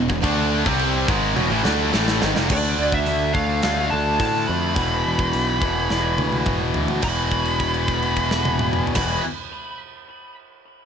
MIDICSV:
0, 0, Header, 1, 6, 480
1, 0, Start_track
1, 0, Tempo, 567108
1, 198, Time_signature, 4, 2, 24, 8
1, 9185, End_track
2, 0, Start_track
2, 0, Title_t, "Lead electric guitar"
2, 0, Program_c, 0, 29
2, 2138, Note_on_c, 0, 74, 96
2, 2487, Note_off_c, 0, 74, 0
2, 2490, Note_on_c, 0, 76, 84
2, 2827, Note_off_c, 0, 76, 0
2, 2830, Note_on_c, 0, 77, 86
2, 3302, Note_on_c, 0, 81, 102
2, 3324, Note_off_c, 0, 77, 0
2, 3543, Note_off_c, 0, 81, 0
2, 3553, Note_on_c, 0, 81, 104
2, 3785, Note_on_c, 0, 83, 98
2, 3799, Note_off_c, 0, 81, 0
2, 5434, Note_off_c, 0, 83, 0
2, 5955, Note_on_c, 0, 83, 86
2, 7495, Note_off_c, 0, 83, 0
2, 7581, Note_on_c, 0, 83, 80
2, 7784, Note_off_c, 0, 83, 0
2, 9185, End_track
3, 0, Start_track
3, 0, Title_t, "Distorted electric guitar"
3, 0, Program_c, 1, 30
3, 2815, Note_on_c, 1, 62, 84
3, 2832, Note_on_c, 1, 57, 77
3, 2842, Note_on_c, 1, 50, 66
3, 4008, Note_off_c, 1, 62, 0
3, 4016, Note_off_c, 1, 57, 0
3, 4021, Note_off_c, 1, 50, 0
3, 4734, Note_on_c, 1, 52, 80
3, 4753, Note_on_c, 1, 47, 71
3, 4766, Note_on_c, 1, 40, 74
3, 5924, Note_off_c, 1, 40, 0
3, 5928, Note_off_c, 1, 52, 0
3, 5938, Note_off_c, 1, 47, 0
3, 9185, End_track
4, 0, Start_track
4, 0, Title_t, "Distorted electric guitar"
4, 0, Program_c, 2, 30
4, 73, Note_on_c, 2, 40, 69
4, 77, Note_on_c, 2, 47, 72
4, 194, Note_off_c, 2, 47, 0
4, 195, Note_off_c, 2, 40, 0
4, 198, Note_on_c, 2, 50, 93
4, 202, Note_on_c, 2, 57, 107
4, 205, Note_on_c, 2, 62, 110
4, 549, Note_off_c, 2, 50, 0
4, 552, Note_off_c, 2, 57, 0
4, 553, Note_off_c, 2, 62, 0
4, 553, Note_on_c, 2, 48, 93
4, 559, Note_on_c, 2, 60, 104
4, 560, Note_on_c, 2, 55, 89
4, 907, Note_off_c, 2, 48, 0
4, 909, Note_off_c, 2, 60, 0
4, 910, Note_off_c, 2, 55, 0
4, 911, Note_on_c, 2, 44, 89
4, 914, Note_on_c, 2, 51, 88
4, 919, Note_on_c, 2, 56, 104
4, 1145, Note_off_c, 2, 44, 0
4, 1147, Note_off_c, 2, 51, 0
4, 1149, Note_off_c, 2, 56, 0
4, 1152, Note_on_c, 2, 40, 93
4, 1153, Note_on_c, 2, 47, 113
4, 1266, Note_off_c, 2, 40, 0
4, 1267, Note_off_c, 2, 47, 0
4, 1276, Note_on_c, 2, 45, 89
4, 1281, Note_on_c, 2, 52, 110
4, 1387, Note_off_c, 2, 45, 0
4, 1390, Note_off_c, 2, 52, 0
4, 1397, Note_on_c, 2, 50, 93
4, 1404, Note_on_c, 2, 57, 105
4, 1404, Note_on_c, 2, 62, 99
4, 1628, Note_off_c, 2, 50, 0
4, 1631, Note_off_c, 2, 57, 0
4, 1631, Note_off_c, 2, 62, 0
4, 1637, Note_on_c, 2, 45, 92
4, 1640, Note_on_c, 2, 52, 99
4, 1641, Note_on_c, 2, 57, 104
4, 1868, Note_off_c, 2, 45, 0
4, 1869, Note_off_c, 2, 52, 0
4, 1870, Note_off_c, 2, 57, 0
4, 1879, Note_on_c, 2, 44, 85
4, 1886, Note_on_c, 2, 51, 97
4, 1989, Note_off_c, 2, 44, 0
4, 1992, Note_off_c, 2, 51, 0
4, 2011, Note_on_c, 2, 41, 90
4, 2011, Note_on_c, 2, 48, 106
4, 2114, Note_off_c, 2, 41, 0
4, 2114, Note_off_c, 2, 48, 0
4, 2127, Note_on_c, 2, 50, 85
4, 2137, Note_on_c, 2, 57, 89
4, 2144, Note_on_c, 2, 62, 89
4, 3054, Note_off_c, 2, 50, 0
4, 3063, Note_off_c, 2, 57, 0
4, 3065, Note_on_c, 2, 50, 81
4, 3072, Note_off_c, 2, 62, 0
4, 3073, Note_on_c, 2, 57, 82
4, 3083, Note_on_c, 2, 62, 91
4, 4013, Note_off_c, 2, 50, 0
4, 4017, Note_off_c, 2, 57, 0
4, 4022, Note_off_c, 2, 62, 0
4, 4022, Note_on_c, 2, 40, 82
4, 4029, Note_on_c, 2, 47, 100
4, 4040, Note_on_c, 2, 52, 96
4, 4972, Note_off_c, 2, 40, 0
4, 4975, Note_off_c, 2, 47, 0
4, 4981, Note_off_c, 2, 52, 0
4, 4988, Note_on_c, 2, 40, 71
4, 4995, Note_on_c, 2, 47, 86
4, 5001, Note_on_c, 2, 52, 84
4, 5935, Note_off_c, 2, 40, 0
4, 5939, Note_off_c, 2, 47, 0
4, 5942, Note_off_c, 2, 52, 0
4, 5946, Note_on_c, 2, 40, 94
4, 5963, Note_on_c, 2, 47, 84
4, 5980, Note_on_c, 2, 52, 99
4, 7581, Note_off_c, 2, 40, 0
4, 7585, Note_on_c, 2, 40, 88
4, 7596, Note_off_c, 2, 47, 0
4, 7599, Note_on_c, 2, 47, 86
4, 7613, Note_off_c, 2, 52, 0
4, 7616, Note_on_c, 2, 52, 98
4, 7801, Note_off_c, 2, 40, 0
4, 7808, Note_off_c, 2, 47, 0
4, 7817, Note_off_c, 2, 52, 0
4, 9185, End_track
5, 0, Start_track
5, 0, Title_t, "Picked electric bass"
5, 0, Program_c, 3, 34
5, 84, Note_on_c, 3, 28, 84
5, 193, Note_off_c, 3, 28, 0
5, 198, Note_on_c, 3, 38, 97
5, 531, Note_off_c, 3, 38, 0
5, 561, Note_on_c, 3, 36, 105
5, 893, Note_off_c, 3, 36, 0
5, 917, Note_on_c, 3, 32, 99
5, 1139, Note_off_c, 3, 32, 0
5, 1157, Note_on_c, 3, 28, 97
5, 1267, Note_off_c, 3, 28, 0
5, 1271, Note_on_c, 3, 33, 91
5, 1384, Note_off_c, 3, 33, 0
5, 1403, Note_on_c, 3, 38, 106
5, 1622, Note_off_c, 3, 38, 0
5, 1640, Note_on_c, 3, 33, 99
5, 1860, Note_off_c, 3, 33, 0
5, 1883, Note_on_c, 3, 32, 105
5, 1990, Note_off_c, 3, 32, 0
5, 2005, Note_on_c, 3, 29, 94
5, 2111, Note_off_c, 3, 29, 0
5, 2116, Note_on_c, 3, 38, 94
5, 2334, Note_off_c, 3, 38, 0
5, 2358, Note_on_c, 3, 38, 86
5, 2575, Note_off_c, 3, 38, 0
5, 2599, Note_on_c, 3, 38, 85
5, 2816, Note_off_c, 3, 38, 0
5, 2831, Note_on_c, 3, 38, 89
5, 3051, Note_off_c, 3, 38, 0
5, 3084, Note_on_c, 3, 38, 88
5, 3298, Note_off_c, 3, 38, 0
5, 3324, Note_on_c, 3, 38, 89
5, 3538, Note_off_c, 3, 38, 0
5, 3552, Note_on_c, 3, 45, 86
5, 3771, Note_off_c, 3, 45, 0
5, 3803, Note_on_c, 3, 41, 90
5, 4018, Note_off_c, 3, 41, 0
5, 4028, Note_on_c, 3, 28, 99
5, 4249, Note_off_c, 3, 28, 0
5, 4286, Note_on_c, 3, 28, 83
5, 4499, Note_off_c, 3, 28, 0
5, 4527, Note_on_c, 3, 35, 85
5, 4740, Note_off_c, 3, 35, 0
5, 4752, Note_on_c, 3, 28, 94
5, 4972, Note_off_c, 3, 28, 0
5, 4997, Note_on_c, 3, 28, 88
5, 5214, Note_off_c, 3, 28, 0
5, 5231, Note_on_c, 3, 38, 85
5, 5451, Note_off_c, 3, 38, 0
5, 5470, Note_on_c, 3, 28, 87
5, 5691, Note_off_c, 3, 28, 0
5, 5709, Note_on_c, 3, 38, 83
5, 5930, Note_off_c, 3, 38, 0
5, 5949, Note_on_c, 3, 28, 85
5, 7493, Note_off_c, 3, 28, 0
5, 7583, Note_on_c, 3, 28, 84
5, 7785, Note_off_c, 3, 28, 0
5, 9185, End_track
6, 0, Start_track
6, 0, Title_t, "Drums"
6, 82, Note_on_c, 9, 36, 85
6, 166, Note_off_c, 9, 36, 0
6, 200, Note_on_c, 9, 52, 65
6, 201, Note_on_c, 9, 36, 111
6, 285, Note_off_c, 9, 52, 0
6, 286, Note_off_c, 9, 36, 0
6, 559, Note_on_c, 9, 36, 102
6, 644, Note_off_c, 9, 36, 0
6, 672, Note_on_c, 9, 52, 59
6, 757, Note_off_c, 9, 52, 0
6, 918, Note_on_c, 9, 36, 113
6, 1002, Note_off_c, 9, 36, 0
6, 1155, Note_on_c, 9, 48, 64
6, 1240, Note_off_c, 9, 48, 0
6, 1398, Note_on_c, 9, 38, 86
6, 1482, Note_off_c, 9, 38, 0
6, 1640, Note_on_c, 9, 38, 90
6, 1724, Note_off_c, 9, 38, 0
6, 1760, Note_on_c, 9, 38, 89
6, 1845, Note_off_c, 9, 38, 0
6, 1877, Note_on_c, 9, 38, 108
6, 1962, Note_off_c, 9, 38, 0
6, 2000, Note_on_c, 9, 38, 95
6, 2085, Note_off_c, 9, 38, 0
6, 2113, Note_on_c, 9, 49, 116
6, 2117, Note_on_c, 9, 36, 123
6, 2198, Note_off_c, 9, 49, 0
6, 2201, Note_off_c, 9, 36, 0
6, 2475, Note_on_c, 9, 36, 85
6, 2559, Note_off_c, 9, 36, 0
6, 2592, Note_on_c, 9, 46, 55
6, 2677, Note_off_c, 9, 46, 0
6, 2833, Note_on_c, 9, 36, 91
6, 2918, Note_off_c, 9, 36, 0
6, 3069, Note_on_c, 9, 46, 55
6, 3075, Note_on_c, 9, 38, 111
6, 3154, Note_off_c, 9, 46, 0
6, 3160, Note_off_c, 9, 38, 0
6, 3553, Note_on_c, 9, 36, 88
6, 3554, Note_on_c, 9, 46, 61
6, 3638, Note_off_c, 9, 36, 0
6, 3639, Note_off_c, 9, 46, 0
6, 4030, Note_on_c, 9, 46, 62
6, 4032, Note_on_c, 9, 36, 115
6, 4115, Note_off_c, 9, 46, 0
6, 4116, Note_off_c, 9, 36, 0
6, 4392, Note_on_c, 9, 36, 83
6, 4477, Note_off_c, 9, 36, 0
6, 4514, Note_on_c, 9, 46, 54
6, 4599, Note_off_c, 9, 46, 0
6, 4753, Note_on_c, 9, 36, 87
6, 4838, Note_off_c, 9, 36, 0
6, 4998, Note_on_c, 9, 38, 63
6, 5082, Note_off_c, 9, 38, 0
6, 5233, Note_on_c, 9, 48, 80
6, 5317, Note_off_c, 9, 48, 0
6, 5352, Note_on_c, 9, 48, 65
6, 5436, Note_off_c, 9, 48, 0
6, 5467, Note_on_c, 9, 47, 78
6, 5471, Note_on_c, 9, 36, 84
6, 5552, Note_off_c, 9, 47, 0
6, 5556, Note_off_c, 9, 36, 0
6, 5707, Note_on_c, 9, 43, 89
6, 5792, Note_off_c, 9, 43, 0
6, 5825, Note_on_c, 9, 43, 79
6, 5910, Note_off_c, 9, 43, 0
6, 5945, Note_on_c, 9, 49, 87
6, 5950, Note_on_c, 9, 36, 100
6, 6029, Note_off_c, 9, 49, 0
6, 6035, Note_off_c, 9, 36, 0
6, 6191, Note_on_c, 9, 36, 61
6, 6191, Note_on_c, 9, 49, 41
6, 6276, Note_off_c, 9, 36, 0
6, 6276, Note_off_c, 9, 49, 0
6, 6309, Note_on_c, 9, 57, 46
6, 6394, Note_off_c, 9, 57, 0
6, 6432, Note_on_c, 9, 36, 62
6, 6432, Note_on_c, 9, 49, 41
6, 6516, Note_off_c, 9, 36, 0
6, 6517, Note_off_c, 9, 49, 0
6, 6552, Note_on_c, 9, 57, 49
6, 6637, Note_off_c, 9, 57, 0
6, 6669, Note_on_c, 9, 49, 51
6, 6671, Note_on_c, 9, 36, 62
6, 6754, Note_off_c, 9, 49, 0
6, 6756, Note_off_c, 9, 36, 0
6, 6793, Note_on_c, 9, 57, 50
6, 6878, Note_off_c, 9, 57, 0
6, 6912, Note_on_c, 9, 36, 61
6, 6913, Note_on_c, 9, 49, 50
6, 6997, Note_off_c, 9, 36, 0
6, 6997, Note_off_c, 9, 49, 0
6, 7035, Note_on_c, 9, 38, 88
6, 7120, Note_off_c, 9, 38, 0
6, 7154, Note_on_c, 9, 48, 100
6, 7239, Note_off_c, 9, 48, 0
6, 7273, Note_on_c, 9, 47, 96
6, 7358, Note_off_c, 9, 47, 0
6, 7389, Note_on_c, 9, 45, 98
6, 7474, Note_off_c, 9, 45, 0
6, 7510, Note_on_c, 9, 43, 89
6, 7575, Note_on_c, 9, 49, 95
6, 7581, Note_on_c, 9, 38, 87
6, 7583, Note_on_c, 9, 36, 112
6, 7594, Note_off_c, 9, 43, 0
6, 7660, Note_off_c, 9, 49, 0
6, 7666, Note_off_c, 9, 38, 0
6, 7667, Note_off_c, 9, 36, 0
6, 9185, End_track
0, 0, End_of_file